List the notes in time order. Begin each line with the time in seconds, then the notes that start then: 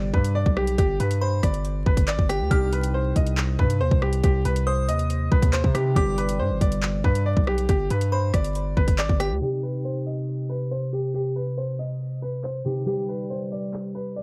Already playing: G1 G3 G4 B4 D5
0.14 G2 B4, kick
0.24 closed hi-hat
0.35 D5
0.46 B1, kick
0.57 G4, cross-stick
0.67 closed hi-hat
0.78 G1 G4, kick, closed hi-hat
1.00 G2 B4, closed hi-hat
1.11 closed hi-hat
1.21 C5 B5
1.43 G1 D5, kick, cross-stick, closed hi-hat
1.54 closed hi-hat
1.65 closed hi-hat
1.86 G1 B4, kick
1.97 kick, closed hi-hat
2.08 G#1 D5, clap, closed hi-hat
2.19 G1, kick
2.29 G4 G5, cross-stick, closed hi-hat
2.40 D2
2.50 C2 C3 C4 D#4 G4 F6, kick, closed hi-hat
2.73 B4, closed hi-hat
2.83 closed hi-hat
2.94 C5
3.16 C2 D#5, kick, closed hi-hat
3.27 closed hi-hat
3.37 clap
3.59 G2 B4, kick
3.70 closed hi-hat
3.80 D#2 C5
3.91 C2, kick
4.02 G4, cross-stick
4.13 closed hi-hat
4.24 C2 G4, kick, closed hi-hat
4.45 C2 B4, closed hi-hat
4.56 closed hi-hat
4.67 C5 D#6
4.88 D#2 D#5, closed hi-hat
4.99 closed hi-hat
5.10 closed hi-hat
5.32 C2 B4, kick
5.42 D#2, kick, closed hi-hat
5.53 C5, clap, closed hi-hat
5.64 C3, kick
5.74 C3 C4 D#4 G4, cross-stick, closed hi-hat
5.95 G1 G3 G4 B4 D5 D6, kick, closed hi-hat
6.18 B4, closed hi-hat
6.29 closed hi-hat
6.39 G2 C5
6.50 G1
6.61 G1 D5, kick, closed hi-hat
6.72 closed hi-hat
6.83 clap
7.04 G2 B4, kick
7.15 closed hi-hat
7.26 D5
7.37 B1, kick
7.47 G4, cross-stick
7.58 closed hi-hat
7.69 G1 G4, kick, closed hi-hat
7.90 G2 B4, closed hi-hat
8.01 closed hi-hat
8.12 C5 B5
8.34 G1 D5, kick, cross-stick, closed hi-hat
8.44 closed hi-hat
8.55 closed hi-hat
8.77 G1 B4, kick
8.88 kick, closed hi-hat
8.98 G#1 D5, clap, closed hi-hat
9.09 G1, kick
9.20 G4 G5, cross-stick, closed hi-hat
9.31 D2
9.40 C3 C4 D#4 G4
9.63 B4, closed hi-hat
9.74 closed hi-hat
9.85 C5
10.06 D#5, closed hi-hat
10.17 closed hi-hat
10.49 B4
10.60 closed hi-hat
10.71 C5
10.93 G4
11.03 closed hi-hat
11.14 G4, closed hi-hat
11.36 B4, closed hi-hat
11.47 closed hi-hat
11.58 C5
11.79 D#5, closed hi-hat
11.90 closed hi-hat
12.01 closed hi-hat
12.22 B4
12.33 closed hi-hat
12.44 C5, clap, closed hi-hat
12.64 C3 C4 D#4 G4, closed hi-hat
12.85 G3 G4 B4 D5, closed hi-hat
13.09 B4, closed hi-hat
13.19 closed hi-hat
13.30 C5
13.52 D5, closed hi-hat
13.63 closed hi-hat
13.73 clap
13.95 B4
14.06 closed hi-hat
14.16 D5